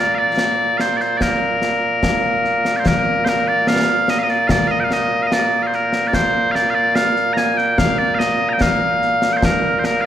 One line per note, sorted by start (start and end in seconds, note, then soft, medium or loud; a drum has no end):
0.00 10.06 A#2 medium
0.00 10.06 A#3 medium
0.00 0.15 D5 medium
0.15 0.77 D5 medium
0.15 0.18 F5 medium
0.38 snare medium
0.77 0.97 C5 medium
0.77 0.81 F5 medium
0.77 snare medium
0.97 1.18 C5 medium
0.97 1.01 D5 medium
0.97 snare soft
1.18 1.22 D5 medium
1.18 concert bass drum soft
1.18 snare medium
1.22 2.76 A#4 medium
1.62 snare medium
2.03 concert bass drum medium
2.03 snare medium
2.45 snare soft
2.65 snare medium
2.76 2.87 C5 medium
2.76 2.80 D5 medium
2.86 3.24 A#4 medium
2.86 concert bass drum medium
2.86 snare medium
3.24 3.29 C5 medium
3.24 snare medium
3.29 3.48 A#4 medium
3.48 3.68 D5 loud
3.67 4.10 F5 medium
3.67 snare loud
3.88 snare soft
4.08 4.19 D#5 loud
4.08 snare medium
4.19 4.23 F5 medium
4.23 4.30 D#5 medium
4.28 4.47 D5 medium
4.28 snare soft
4.47 4.67 D5 medium
4.47 4.51 F5 medium
4.47 concert bass drum medium
4.47 snare loud
4.67 4.80 D#5 loud
4.67 4.71 F5 loud
4.80 4.84 G5 medium
4.84 4.93 F5 medium
4.91 5.22 D#5 medium
4.91 snare medium
5.22 5.27 F5 medium
5.27 5.33 D#5 medium
5.32 5.62 D5 medium
5.32 snare medium
5.62 5.67 F5 medium
5.67 5.75 C5 medium
5.73 6.08 A#4 medium
5.73 snare soft
5.93 snare medium
6.08 6.14 D5 medium
6.13 6.52 C5 loud
6.13 concert bass drum soft
6.13 snare medium
6.52 6.70 D5 medium
6.52 6.55 F5 medium
6.52 snare medium
6.70 6.75 F5 loud
6.75 6.95 D5 loud
6.95 7.33 F5 loud
6.95 snare medium
7.16 snare soft
7.33 7.37 A#5 loud
7.33 snare medium
7.37 7.57 G#5 loud
7.57 7.78 G5 loud
7.57 snare soft
7.78 7.98 F5 loud
7.78 concert bass drum medium
7.78 snare medium
7.98 8.15 D5 loud
8.15 8.19 F5 medium
8.19 8.49 D#5 medium
8.19 snare medium
8.49 8.61 G5 medium
8.49 8.53 A#5 medium
8.61 9.33 F5 loud
8.61 concert bass drum medium
8.61 snare loud
9.02 snare soft
9.22 snare medium
9.33 9.37 G5 medium
9.37 9.44 C5 medium
9.42 9.79 A#4 loud
9.42 concert bass drum medium
9.42 snare loud
9.79 9.85 C5 medium
9.84 10.01 A#4 medium
9.84 snare medium
10.01 10.05 F5 loud